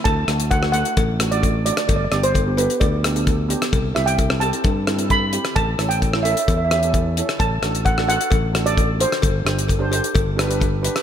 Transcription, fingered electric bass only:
\new Staff \with { instrumentName = "Fingered electric bass" } { \clef bass \time 4/4 \key d \dorian \tempo 4 = 131 d,8 d,4. a,,2 | g,,8 g,,4. d,2 | c,8 c,4. g,2 | a,,8 a,,4. e,2 |
a,,8 a,,4. a,,2 | g,,8 g,,4. g,,2 | }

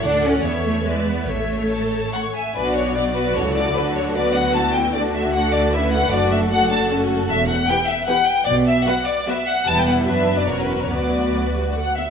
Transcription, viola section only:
\new Staff \with { instrumentName = "Viola section" } { \time 3/4 \key a \major \tempo 4 = 150 << { r2. | r2. | \key b \minor d'4 b4 e'4 | d'4 b4 e'4 |
d'4 d'4 cis'4 | d'4 d'4 cis'4 | r4 b4 b4 | r4 b4 b4 |
b4 b4 cis'4 | b4 fis8 g8 a8 b8 | } \\ { a'4 a'4 b'4 | a'2~ a'8 r8 | fis2 fis4~ | fis2 b4 |
a4 a2~ | a2 a4 | r4 e4 e4 | r4 fis4 fis4 |
g4 fis4 fis4 | fis4 r2 | } >> }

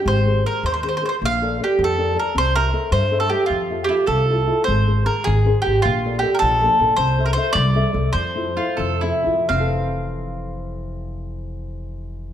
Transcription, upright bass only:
\new Staff \with { instrumentName = "Upright bass" } { \clef bass \time 6/8 \key f \major \tempo 4. = 103 aes,,4. ees,4. | bes,,4. f,4. | c,4. g,4. | f,4. c,4. |
aes,,4. aes,,4 aes,,8 | bes,,4. bes,,4 bes,,8 | c,4. c,4 c,8 | f,4. f,4 f,8 |
f,,2.~ | f,,2. | }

